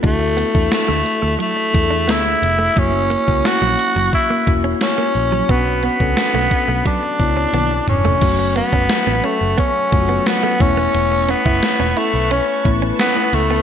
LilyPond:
<<
  \new Staff \with { instrumentName = "Ambient pad" } { \time 4/4 \key fis \phrygian \tempo 4 = 88 << { r1 | r1 | r1 | cis'''1~ |
cis'''1 | } \\ { r1 | r1 | r1 | <a' fis''>2.~ <a' fis''>8 <b' a''>8~ |
<b' a''>1 | } >> }
  \new Staff \with { instrumentName = "Tine electric piano" } { \time 4/4 \key fis \phrygian <a d' e' fis'>8 r16 <a d' e' a'>4 r8. <a d' e' gis' a'>4 r8 | <ais cis' e' fis'>8 r16 <ais cis' e' fis'>4 r8. <ais cis' e' fis'>4 r8 | <b cis' d' fis'>8 r16 <b cis' d' a'>4 r8. <b d' e' cis''>4 r8 | <fis a cis' fis'>4~ <fis a cis' fis'>16 r4 r16 <fis a cis' f' fis'>4 <a b cis' e'>8~ |
<a b cis' e'>4 r4. <a b cis' e'>4 r8 | }
  \new Staff \with { instrumentName = "Clean electric guitar" } { \time 4/4 \key fis \phrygian d'16 r16 b16 r8 a16 r16 a16 fis16 r8 d'16 b16 r8 a16 | fis16 r16 ais16 r8 fis16 r16 fis16 r16 ais16 r16 cis'16 r16 ais16 r16 fis16 | b16 r16 b16 r8 a16 r16 a16 fis16 r8 cis'16 b16 r8 a16 | r8 b16 cis'16 r16 b16 cis'16 r16 b16 r8 b16 r16 a16 r16 b16 |
r8 cis'16 e'16 r16 cis'16 e'16 r16 cis'16 r8 cis'16 r16 b16 r16 b16 | }
  \new Staff \with { instrumentName = "Tenor saxophone" } { \time 4/4 \key fis \phrygian a4 a4 a4 e'4 | cis'4 fis'4 e'8 r8 cis'4 | b8 b4. d'4. cis'8~ | cis'8 b4 a8 cis'4 b8 cis'8~ |
cis'8 b4 a8 cis'8 r8 b8 a8 | }
  \new Staff \with { instrumentName = "Picked electric bass" } { \clef bass \time 4/4 \key fis \phrygian d,8. e,16 r16 d,16 r16 d,16 r8 e,8 d,8 f,,8 | fis,,8. cis,16 r16 ais,,16 r16 fis,,16 r8 e,,8 r8 ais,,8 | b,,8. cis,16 r16 b,,16 r16 b,,16 r8 cis,8 b,,8 f,,8 | fis,,8. fis,,16 r16 a,,16 r16 fis,,16 r8 fis,,8 r8 e,,8 |
e,,8. fis,,16 r16 e,,16 r16 b,,8 r16 a,,8 r8 cis,8 | }
  \new DrumStaff \with { instrumentName = "Drums" } \drummode { \time 4/4 <hh bd>8 hh16 bd16 <hh sn>8 hh8 hh8 <hh bd>8 <hh sn>8 hh8 | <hh bd>8 hh16 bd16 <hh sn>8 hh8 <hh bd>8 <hh bd>8 <hh sn>8 hh8 | <hh bd>8 hh16 bd16 <hh sn>8 <hh bd>8 <hh bd>8 <hh bd>8 <hh tommh>8 <hh toml>16 tomfh16 | <cymc hh bd>8 hh16 bd16 <hh sn>8 hh8 <hh bd>8 <hh bd>8 <hh sn>8 <hh bd>8 |
hh8 hh16 bd16 <hh sn>8 hh8 hh8 <hh bd>8 <hh sn>8 hh8 | }
>>